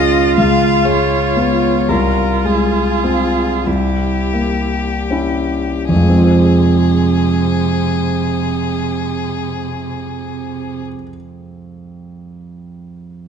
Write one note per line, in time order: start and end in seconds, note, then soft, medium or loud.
0.00 0.33 C#2 soft
0.00 0.18 G#3 soft
0.00 0.33 C#4 soft
0.00 0.34 F4 soft
0.00 1.89 F4 medium
0.00 0.35 D#5 medium
0.38 1.85 C#2 soft
0.38 0.87 F5 medium
0.85 1.67 G#3 soft
0.85 1.90 C#5 medium
1.36 1.85 B3 soft
1.36 1.85 F4 soft
1.89 3.62 C2 soft
1.89 3.68 F4 medium
1.89 2.47 A#4 medium
2.44 3.41 G#3 soft
2.44 3.68 G#4 soft
3.04 3.63 C4 soft
3.04 3.63 F4 soft
3.66 5.86 C2 soft
3.66 4.72 E4 soft
3.66 5.90 G4 medium
4.34 5.58 A#3 soft
5.11 5.85 C#4 soft
5.11 5.86 E4 soft
5.89 10.81 F2 soft
5.89 10.81 C3 soft
5.89 10.83 G#4 medium
5.96 10.88 F3 soft
6.03 10.95 G#3 soft
6.10 11.02 C4 soft
6.17 11.09 F4 soft
6.24 11.16 C5 soft